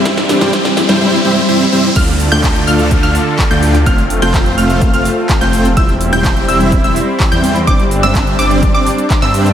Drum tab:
CC |----------------|x---------------|----------------|----------------|
HH |xxoxxxox--------|xxoxxxoxxxo-oxox|xxoxxxoxxxo-xxox|xxoxxxoxxxo-oxox|
CP |----------------|----x-------x---|----x-------xx--|----x-------x---|
SD |oooooooo--------|----------------|----------------|----------------|
BD |o---o-----------|o---o---o---o---|o---o---o---o---|o---o---o---o---|

CC |----------------|
HH |xxoxxxoxxxoxxxox|
CP |----x-------xx--|
SD |----------------|
BD |o---o---o---o---|